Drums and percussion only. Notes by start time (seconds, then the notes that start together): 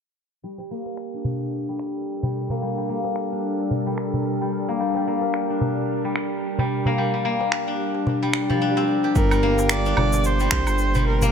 0.59 darbuka tek
0.86 darbuka ka
0.97 finger snap
1.25 darbuka dum
1.79 finger snap
2.23 darbuka dum
2.50 darbuka dum
3.04 darbuka ka, darbuka tek
3.16 finger snap
3.60 darbuka tek
3.71 darbuka dum
3.86 darbuka ka
3.98 finger snap, darbuka ka
4.14 darbuka dum
4.52 darbuka ka
4.68 darbuka ka
4.94 darbuka tek
5.22 darbuka ka
5.34 finger snap
5.61 darbuka dum
6.16 finger snap
6.59 darbuka dum
6.86 darbuka dum
7.41 darbuka ka, darbuka tek
7.52 finger snap
7.95 darbuka tek
8.07 darbuka dum
8.22 darbuka ka
8.34 finger snap, darbuka ka
8.50 darbuka dum
8.88 darbuka ka
9.04 darbuka ka
9.15 kick, shaker
9.31 low woodblock, shaker
9.58 darbuka ka, darbuka tek, shaker
9.69 finger snap, shaker
9.86 darbuka ka, shaker
9.97 darbuka dum, low woodblock
10.13 darbuka tek, shaker
10.24 shaker
10.40 shaker
10.51 finger snap, kick
10.67 low woodblock, shaker
10.78 shaker
10.94 darbuka dum, shaker
11.22 darbuka dum, shaker